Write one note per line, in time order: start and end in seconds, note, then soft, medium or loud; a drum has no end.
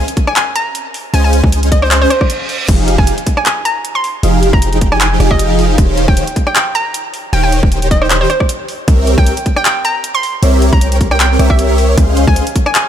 0.08 closed hi-hat medium
0.17 kick medium
0.17 closed hi-hat medium
0.27 0.33 G#5 medium
0.27 cross-stick medium
0.36 0.43 G#5 medium
0.36 clap loud
0.36 closed hi-hat medium
0.56 0.65 A#5 medium
0.56 closed hi-hat medium
0.75 closed hi-hat medium
0.94 open hi-hat medium
1.14 1.41 C#2 loud
1.14 1.41 C#4 medium
1.14 1.41 G#4 medium
1.14 1.41 C5 medium
1.14 1.41 D#5 medium
1.14 1.41 F5 medium
1.14 1.20 G#5 medium
1.14 closed hi-hat medium
1.24 1.30 G#5 medium
1.33 closed hi-hat medium
1.44 2.07 C#2 loud
1.44 2.08 C#4 medium
1.44 2.08 G#4 medium
1.44 2.08 C5 medium
1.44 2.08 D#5 medium
1.44 2.08 G#5 medium
1.44 kick loud
1.52 closed hi-hat medium
1.63 closed hi-hat medium
1.72 1.80 D#5 medium
1.72 kick medium
1.72 closed hi-hat medium
1.82 1.88 C5 medium
1.82 cross-stick medium
1.91 1.98 C5 medium
1.91 clap loud
1.91 closed hi-hat medium
1.91 reverse cymbal medium
2.02 2.07 C5 medium
2.10 2.17 C5 medium
2.10 cross-stick medium
2.10 closed hi-hat medium
2.21 kick medium
2.21 cross-stick medium
2.30 closed hi-hat medium
2.49 open hi-hat medium
2.68 2.96 F1 loud
2.68 2.96 F3 medium
2.68 2.96 D#4 medium
2.68 2.96 G4 medium
2.68 2.96 G#4 medium
2.68 2.96 F5 medium
2.68 kick loud
2.68 closed hi-hat medium
2.68 crash medium
2.88 closed hi-hat medium
2.98 3.11 F1 loud
2.98 3.13 D#4 medium
2.98 3.13 G4 medium
2.98 3.13 G#4 medium
2.98 3.07 G#5 medium
2.98 kick loud
3.07 closed hi-hat medium
3.18 closed hi-hat medium
3.27 kick medium
3.27 closed hi-hat medium
3.37 3.43 G#5 medium
3.37 cross-stick medium
3.46 3.53 G#5 medium
3.46 clap loud
3.46 closed hi-hat medium
3.65 3.75 A#5 medium
3.65 closed hi-hat medium
3.85 closed hi-hat medium
3.95 4.03 C6 medium
4.04 open hi-hat medium
4.23 4.51 F1 loud
4.23 4.51 F3 medium
4.23 4.51 D#4 medium
4.23 4.51 G4 medium
4.23 4.51 G#4 medium
4.23 4.51 F5 medium
4.23 closed hi-hat medium
4.43 closed hi-hat medium
4.53 5.18 F1 loud
4.53 4.61 A#5 loud
4.53 kick loud
4.62 closed hi-hat medium
4.73 closed hi-hat medium
4.81 kick medium
4.81 closed hi-hat medium
4.92 4.98 G#5 medium
4.92 cross-stick medium
5.01 5.08 G#5 medium
5.01 clap loud
5.01 closed hi-hat medium
5.20 5.76 F1 loud
5.20 5.76 F3 medium
5.20 5.76 D#4 medium
5.20 5.76 G4 medium
5.20 5.76 G#4 medium
5.20 5.76 F5 medium
5.20 cross-stick medium
5.20 closed hi-hat medium
5.31 5.69 D#5 medium
5.31 kick medium
5.31 cross-stick medium
5.39 closed hi-hat medium
5.59 open hi-hat medium
5.78 6.06 D#1 loud
5.78 6.06 D#3 medium
5.78 6.06 D#4 medium
5.78 6.06 G4 medium
5.78 6.06 C5 medium
5.78 6.06 C#5 medium
5.78 6.06 F5 medium
5.78 kick loud
5.78 closed hi-hat medium
5.97 closed hi-hat medium
6.08 6.21 D#1 loud
6.08 6.23 D#3 medium
6.08 6.23 D#4 medium
6.08 6.23 G4 medium
6.08 6.23 C5 medium
6.08 6.23 C#5 medium
6.08 6.23 F5 loud
6.08 6.16 G5 medium
6.08 kick loud
6.17 closed hi-hat medium
6.27 closed hi-hat medium
6.36 kick medium
6.36 closed hi-hat medium
6.47 6.52 G5 medium
6.47 cross-stick medium
6.55 6.62 G5 medium
6.55 clap loud
6.55 closed hi-hat medium
6.75 6.85 A#5 medium
6.75 closed hi-hat medium
6.94 closed hi-hat medium
7.14 open hi-hat medium
7.33 7.61 D#1 loud
7.33 7.60 D#3 medium
7.33 7.60 D#4 medium
7.33 7.60 G4 medium
7.33 7.60 C5 medium
7.33 7.60 C#5 medium
7.33 7.60 F5 medium
7.33 7.40 G5 medium
7.33 closed hi-hat medium
7.44 7.49 G5 medium
7.52 closed hi-hat medium
7.63 8.26 D#1 loud
7.63 8.28 D#3 medium
7.63 kick loud
7.72 closed hi-hat medium
7.82 closed hi-hat medium
7.91 8.00 D#5 medium
7.91 kick medium
7.91 closed hi-hat medium
8.02 8.07 C5 medium
8.02 cross-stick medium
8.10 8.17 C5 medium
8.10 clap loud
8.10 closed hi-hat medium
8.21 8.27 C5 medium
8.30 8.37 C5 medium
8.30 cross-stick medium
8.30 closed hi-hat medium
8.40 kick medium
8.40 cross-stick medium
8.49 closed hi-hat medium
8.68 open hi-hat medium
8.88 9.16 C2 loud
8.88 9.15 C4 medium
8.88 9.15 G4 medium
8.88 9.15 A#4 medium
8.88 9.15 C#5 medium
8.88 9.15 E5 medium
8.88 kick loud
8.88 closed hi-hat medium
9.07 closed hi-hat medium
9.18 9.31 C2 loud
9.18 9.33 C4 medium
9.18 9.26 G5 medium
9.18 kick loud
9.27 closed hi-hat medium
9.37 closed hi-hat medium
9.46 kick medium
9.46 closed hi-hat medium
9.56 9.62 G5 medium
9.56 cross-stick medium
9.65 9.72 G5 medium
9.65 clap loud
9.65 closed hi-hat medium
9.85 9.94 A#5 medium
9.85 closed hi-hat medium
10.04 closed hi-hat medium
10.15 10.23 C6 medium
10.23 open hi-hat medium
10.43 10.70 C2 loud
10.43 10.70 C4 medium
10.43 10.70 G4 medium
10.43 10.70 A#4 medium
10.43 10.70 C#5 medium
10.43 10.70 E5 medium
10.43 closed hi-hat medium
10.62 closed hi-hat medium
10.73 11.38 C2 loud
10.73 11.37 C4 medium
10.73 11.37 G4 medium
10.73 11.37 A#4 medium
10.73 11.37 C#5 medium
10.73 11.37 G5 medium
10.73 10.81 A#5 medium
10.73 kick loud
10.81 closed hi-hat medium
10.92 closed hi-hat medium
11.01 kick medium
11.01 closed hi-hat medium
11.11 11.17 G5 medium
11.11 cross-stick medium
11.20 11.27 G5 medium
11.20 clap loud
11.20 closed hi-hat medium
11.39 11.96 C2 loud
11.39 11.95 C4 medium
11.39 11.95 G4 medium
11.39 11.95 A#4 medium
11.39 11.95 C#5 medium
11.39 11.95 E5 medium
11.39 cross-stick medium
11.39 closed hi-hat medium
11.50 11.89 E5 loud
11.50 kick medium
11.50 cross-stick medium
11.59 closed hi-hat medium
11.78 open hi-hat medium
11.97 12.25 C#2 loud
11.97 12.25 C#4 medium
11.97 12.25 G#4 medium
11.97 12.25 C5 medium
11.97 12.25 D#5 medium
11.97 12.25 F5 medium
11.97 kick loud
11.97 closed hi-hat medium
12.17 closed hi-hat medium
12.27 12.40 C#2 loud
12.27 12.42 C#4 medium
12.27 12.42 C5 medium
12.27 12.42 F5 loud
12.27 12.36 G#5 medium
12.27 kick loud
12.36 closed hi-hat medium
12.47 closed hi-hat medium
12.56 kick medium
12.56 closed hi-hat medium
12.66 12.72 G#5 medium
12.66 cross-stick medium
12.75 12.82 G#5 medium
12.75 clap loud
12.75 closed hi-hat medium